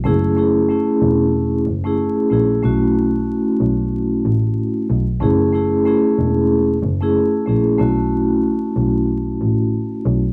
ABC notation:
X:1
M:4/4
L:1/16
Q:"Swing 16ths" 1/4=93
K:F#m
V:1 name="Vibraphone"
[A,CEG]2 [A,CEG]2 [A,CEG]6 z [A,CEG]3 [A,CEG]2 | [A,CEF]12- [A,CEF]3 z | [A,CEG]2 [A,CEG]2 [A,CEG]6 z [A,CEG]3 [A,CEG]2 | [A,CEF]12- [A,CEF]3 z |]
V:2 name="Double bass" clef=bass
F,,,4 z2 E,,,4 F,,,2 z2 ^A,,,2 | B,,,4 z2 B,,,4 A,,,2 z2 B,,, z | F,,,4 z2 E,,,4 F,,,2 z2 ^A,,,2 | B,,,4 z2 B,,,4 A,,,2 z2 B,,, z |]